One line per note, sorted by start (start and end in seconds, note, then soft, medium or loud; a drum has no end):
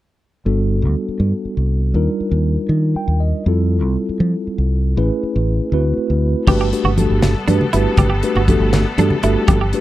0.45 0.84 G1 medium
0.45 1.93 G3 medium
0.45 1.93 B3 medium
0.45 1.93 D4 medium
0.45 1.93 F#4 medium
0.45 1.94 A4 medium
0.82 0.94 D2 medium
1.08 muted fingered electric bass stroke soft
1.20 1.32 G2 medium
1.45 muted fingered electric bass stroke soft
1.57 1.93 C2 medium
1.94 2.07 D#2 medium
1.94 3.43 G3 medium
1.94 3.43 D4 soft
1.94 3.43 D#4 soft
1.94 3.43 F4 medium
1.94 3.44 A#4 medium
2.20 muted fingered electric bass stroke soft
2.31 2.56 D#2 medium
2.69 2.94 D#3 medium
2.95 3.20 G5 medium
2.95 muted fingered electric bass stroke soft
3.08 3.32 D#2 medium
3.20 3.44 D#5 soft
3.46 3.83 F2 medium
3.46 4.95 G3 medium
3.46 4.94 C4 medium
3.46 4.95 E4 medium
3.46 4.95 F4 medium
3.46 4.95 A4 medium
3.83 3.95 C2 medium
4.09 muted fingered electric bass stroke soft
4.20 4.33 F3 medium
4.47 muted fingered electric bass stroke soft
4.58 4.94 C2 medium
4.97 5.09 A1 medium
4.97 5.72 A3 medium
4.97 5.73 C#4 medium
4.97 5.72 E4 medium
4.97 5.73 G#4 medium
4.97 5.72 B4 medium
5.23 muted fingered electric bass stroke soft
5.36 5.59 A1 medium
5.72 5.96 D2 medium
5.72 6.47 A3 medium
5.72 6.48 C4 medium
5.72 6.49 E4 medium
5.72 6.47 F#4 medium
5.72 6.47 B4 medium
5.97 muted fingered electric bass stroke soft
6.10 6.34 D2 medium
6.46 6.71 G1 medium
6.46 9.81 G3 medium
6.46 9.81 A3 medium
6.46 6.68 A3 medium
6.46 9.81 B3 medium
6.46 6.68 D4 medium
6.46 6.68 F#4 medium
6.46 6.68 G4 medium
6.46 6.57 G4 medium
6.46 9.81 A4 medium
6.46 6.68 B4 medium
6.46 kick loud
6.46 crash medium
6.46 high conga medium
6.46 low conga medium
6.61 6.78 G4 medium
6.72 6.90 A3 medium
6.72 6.90 D4 medium
6.72 6.90 F#4 medium
6.72 6.91 G4 medium
6.72 6.91 B4 medium
6.72 closed hi-hat medium
6.84 7.08 G1 medium
6.84 7.02 F#4 medium
6.84 low conga medium
6.97 7.33 A3 medium
6.97 7.33 D4 medium
6.97 7.33 F#4 medium
6.97 7.33 G4 medium
6.97 7.33 A4 medium
6.97 closed hi-hat medium
6.97 high conga medium
7.10 7.34 G1 medium
7.10 low conga soft
7.22 snare loud
7.22 closed hi-hat medium
7.22 low conga medium
7.35 low conga soft
7.48 7.60 G2 medium
7.48 7.66 A3 medium
7.48 7.65 D4 medium
7.48 7.66 D4 medium
7.48 7.66 F#4 medium
7.48 7.66 G4 medium
7.48 7.66 B4 medium
7.48 closed hi-hat medium
7.48 high conga medium
7.61 muted fingered electric bass stroke soft
7.61 low conga medium
7.73 7.85 G1 medium
7.73 8.09 A3 medium
7.73 8.09 D4 medium
7.73 7.90 E4 medium
7.73 8.09 F#4 medium
7.73 8.09 G4 medium
7.73 8.09 B4 medium
7.73 closed hi-hat medium
7.97 8.21 G1 medium
7.97 8.07 G4 medium
7.97 kick loud
7.97 closed hi-hat medium
7.97 high conga medium
7.97 low conga medium
8.10 8.27 G4 medium
8.23 8.41 A3 medium
8.23 8.41 D4 medium
8.23 8.41 F#4 medium
8.23 8.41 G4 medium
8.23 8.41 B4 medium
8.23 closed hi-hat medium
8.36 8.59 G1 medium
8.36 8.54 F#4 medium
8.36 low conga medium
8.48 8.83 A3 medium
8.48 8.84 D4 medium
8.48 8.83 F#4 medium
8.48 8.84 G4 medium
8.48 8.84 A4 medium
8.48 kick medium
8.48 closed hi-hat medium
8.48 high conga medium
8.60 8.84 G1 medium
8.60 low conga soft
8.73 snare medium
8.73 closed hi-hat medium
8.73 low conga medium
8.86 low conga soft
8.98 9.10 G2 medium
8.98 9.16 A3 medium
8.98 9.16 D4 medium
8.98 9.16 F#4 medium
8.98 9.17 G4 medium
8.98 9.17 A4 medium
8.98 closed hi-hat medium
8.98 high conga medium
9.11 muted fingered electric bass stroke soft
9.11 low conga medium
9.23 9.35 G1 medium
9.23 9.58 A3 medium
9.23 9.59 D4 medium
9.23 9.41 E4 medium
9.23 9.59 F#4 medium
9.23 9.59 G4 medium
9.23 9.59 A4 medium
9.23 closed hi-hat medium
9.48 9.72 G1 medium
9.48 9.57 G4 medium
9.48 kick loud
9.48 closed hi-hat medium
9.48 high conga medium
9.48 low conga medium
9.61 9.79 G4 medium
9.73 9.81 A3 medium
9.73 9.81 D4 medium
9.73 9.81 F#4 medium
9.73 9.81 G4 medium
9.73 9.81 B4 medium
9.73 closed hi-hat medium